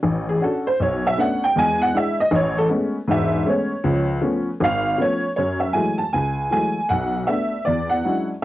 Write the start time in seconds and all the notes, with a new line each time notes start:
0.03 A1
0.29 G#4
0.41 C#4 D4 F#4 A4
0.67 C5
0.80 B1 C#5
1.06 E5
1.17 A3 B3 C#4 D4 F#5
1.44 G5
1.56 E2 G#3 G#5
1.82 F#5
1.93 G#3 D4 E4 E5
2.20 D#5
2.31 A1
2.35 C#5
2.58 A4
2.69 G#3 A3 B3 C#4
3.08 E1 G#2 E5
3.45 G#3 A3 B3 C#4 C5
3.49 C#5
3.84 C#2 F3
4.21 F3 A3 B3 C#4
4.60 G#1 F5
4.98 F3 A3 B3 C#4 C#5
5.36 F#2 C#5
5.60 E5
5.73 E3 F#3 G#3 A3 G#5
5.98 A5
6.13 C#2 G#5
6.51 E3 F#3 G#3 A3 G#5
6.89 B1 F#5
7.27 A3 B3 D4 E5
7.65 E2 D5
7.89 F#5
8.05 F#3 G#3 C#4 D4 E4